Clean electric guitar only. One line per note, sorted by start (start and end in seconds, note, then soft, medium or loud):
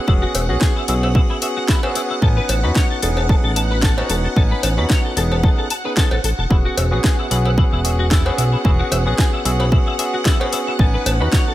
0.07 0.12 E4 medium
0.22 0.31 F#4 loud
0.34 0.39 E5 medium
0.49 0.55 F#4 loud
0.61 0.72 G#4 loud
0.76 0.82 E4 medium
0.88 0.93 E4 loud
1.03 1.07 E4 medium
1.15 1.19 E4 medium
1.30 1.36 E4 medium
1.42 1.46 E5 medium
1.57 1.63 F#4 loud
1.69 1.80 E4 loud
1.83 1.89 E4 medium
1.96 2.00 E4 loud
2.10 2.14 E4 medium
2.22 2.27 A4 medium
2.37 2.46 B4 loud
2.49 2.53 A5 medium
2.64 2.70 B4 loud
2.76 2.87 C#5 loud
2.90 2.96 A4 medium
3.02 3.07 A4 loud
3.17 3.21 A4 medium
3.29 3.34 A4 medium
3.44 3.50 A4 medium
3.56 3.61 A5 medium
3.71 3.77 B4 loud
3.83 3.94 A4 loud
3.98 4.04 A4 medium
4.10 4.14 A4 loud
4.24 4.28 A4 medium
4.37 4.41 A4 medium
4.51 4.60 B4 loud
4.63 4.68 A5 medium
4.78 4.84 B4 loud
4.90 5.01 C#5 medium
5.05 5.11 A4 medium
5.17 5.21 A4 medium
5.32 5.35 A4 medium
5.44 5.48 A4 medium
5.58 5.64 A4 medium
5.71 5.75 A5 medium
5.85 5.91 B4 loud
5.97 6.08 A4 medium
6.12 6.18 A4 medium
6.24 6.28 A4 medium
6.39 6.42 A4 medium
6.51 6.55 E4 medium
6.65 6.74 F#4 loud
6.78 6.82 E5 medium
6.92 6.98 F#4 medium
7.04 7.15 G#4 medium
7.19 7.25 E4 medium
7.31 7.35 E4 loud
7.46 7.49 E4 medium
7.58 7.62 E4 medium
7.73 7.79 E4 medium
7.85 7.89 E5 medium
7.99 8.05 F#4 loud
8.11 8.22 E4 medium
8.26 8.32 E4 medium
8.38 8.42 E4 loud
8.53 8.56 E4 medium
8.65 8.69 E4 medium
8.79 8.89 F#4 loud
8.92 8.96 E5 medium
9.07 9.13 F#4 loud
9.19 9.30 G#4 loud
9.33 9.39 E4 medium
9.45 9.50 E4 loud
9.60 9.64 E4 medium
9.72 9.77 E4 medium
9.87 9.93 E4 medium
9.99 10.03 E5 medium
10.14 10.20 F#4 loud
10.26 10.37 E4 loud
10.41 10.47 E4 medium
10.53 10.57 E4 loud
10.67 10.71 E4 medium
10.80 10.84 A4 medium
10.94 11.03 B4 loud
11.06 11.11 A5 medium
11.21 11.27 B4 loud
11.33 11.44 C#5 loud
11.47 11.53 A4 medium